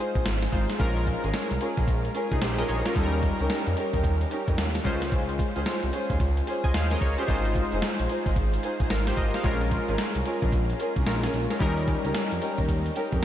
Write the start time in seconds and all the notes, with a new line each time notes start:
Already playing: G#3 D#4 F4 C5
0.00 F4 G#4 C5
0.15 A#1, kick, closed hi-hat
0.26 G#1, snare, closed hi-hat
0.42 snare, closed hi-hat
0.52 G#1 G#3 D#4 F4 C5, kick, closed hi-hat
0.70 snare, closed hi-hat
0.78 A#1 G#3 C#4 F4 A#4, kick, closed hi-hat
0.97 closed hi-hat
1.07 kick, closed hi-hat
1.23 G#1 C#4 F4 G#4 A#4, closed hi-hat
1.34 snare, closed hi-hat
1.50 C2, closed hi-hat
1.61 C#4 F4 G#4 A#4, closed hi-hat
1.77 A#1, kick, closed hi-hat
1.88 A#1, kick, closed hi-hat
2.05 closed hi-hat
2.14 C#4 F4 G#4 A#4, closed hi-hat
2.31 C2 D#4 G#4, kick, closed hi-hat
2.42 A#1 G4 C5, snare, closed hi-hat
2.58 C#4 F4 G#4 A#4 D#5, snare, closed hi-hat
2.68 A#1 G#4 C#5, closed hi-hat
2.85 C#4 F4 G#4 A#4, snare, closed hi-hat
2.94 D#2 G3 C#4 D#4 A4, kick, closed hi-hat
3.03 A#4
3.13 closed hi-hat
3.23 kick, closed hi-hat
3.39 C#2 C#4 D#4 G4 A#4, closed hi-hat
3.50 snare, closed hi-hat
3.67 F2, closed hi-hat
3.76 C#4 D#4 G4 A#4, closed hi-hat
3.94 D#2, kick, closed hi-hat
4.04 D#2, kick, closed hi-hat
4.21 closed hi-hat
4.30 C#4 D#4 G4 A#4, closed hi-hat
4.48 F2, kick, closed hi-hat
4.58 D#2, snare, closed hi-hat
4.75 snare, closed hi-hat
4.84 C#2 G#3 C#4 F4 C5, kick, closed hi-hat
5.02 snare, closed hi-hat
5.12 kick, closed hi-hat
5.29 closed hi-hat
5.39 kick, closed hi-hat
5.55 C#2 C#4 F4 G#4 C5, closed hi-hat
5.66 snare, closed hi-hat
5.83 C2, closed hi-hat
5.93 C#4 F4 G#4 C5, closed hi-hat
6.10 D#2, kick, closed hi-hat
6.20 C#2, kick, closed hi-hat
6.37 closed hi-hat
6.47 C#4 F4 G#4 C5, closed hi-hat
6.64 C#2 D#5 G#5, kick, closed hi-hat
6.74 D#2 C5 F5, snare, closed hi-hat
6.91 C#4 F4 G#4 A#4 C5 D#5, snare, closed hi-hat
7.01 C#2 G#4 C#5, kick, closed hi-hat
7.18 C#4 F4 G4 G#4 C5, closed hi-hat
7.27 G#1 G#3 D#4 F4 C5, kick, closed hi-hat
7.45 closed hi-hat
7.55 kick, closed hi-hat
7.72 F1 D#4 F4 G#4 C5, closed hi-hat
7.82 snare, closed hi-hat
7.99 A#1, closed hi-hat
8.09 D#4 F4 G#4 C5, closed hi-hat
8.26 G#1, kick, closed hi-hat
8.36 G#1, kick, closed hi-hat
8.53 closed hi-hat
8.63 D#4 F4 G#4 C5, closed hi-hat
8.80 A#1, kick, closed hi-hat
8.90 G#1 F4 A#4, snare, closed hi-hat
9.07 G4 C5, snare, closed hi-hat
9.17 G#1 A#4 D#5, kick, closed hi-hat
9.34 C5 F5, snare, closed hi-hat
9.43 A#1 G#3 C#4 F4 A#4, kick, closed hi-hat
9.61 closed hi-hat
9.71 kick, closed hi-hat
9.88 G#1 C#4 F4 G#4 A#4, closed hi-hat
9.98 snare, closed hi-hat
10.15 C2, closed hi-hat
10.25 C#4 F4 G#4 A#4, closed hi-hat
10.42 A#1, kick, closed hi-hat
10.52 A#1, kick, closed hi-hat
10.70 closed hi-hat
10.79 C#4 F4 G#4 A#4, closed hi-hat
10.96 C2, kick, closed hi-hat
11.06 A#1 G#3 C#4 F4 A#4, snare, closed hi-hat
11.23 C#4 F4 G#4 A#4, snare, closed hi-hat
11.34 A#1, closed hi-hat
11.50 C#4 F4 G#4 A#4, snare, closed hi-hat
11.59 D#2 G3 C#4 D#4 A#4, kick, closed hi-hat
11.77 closed hi-hat
11.88 kick, closed hi-hat
12.04 C#2 C#4 D#4 G4 A#4, closed hi-hat
12.15 snare, closed hi-hat
12.31 F2, closed hi-hat
12.41 C#4 D#4 G4 A#4, closed hi-hat
12.58 D#2, kick, closed hi-hat
12.68 D#2, kick, closed hi-hat
12.86 closed hi-hat
12.95 C#4 D#4 G4 A#4, closed hi-hat
13.13 F2, kick, closed hi-hat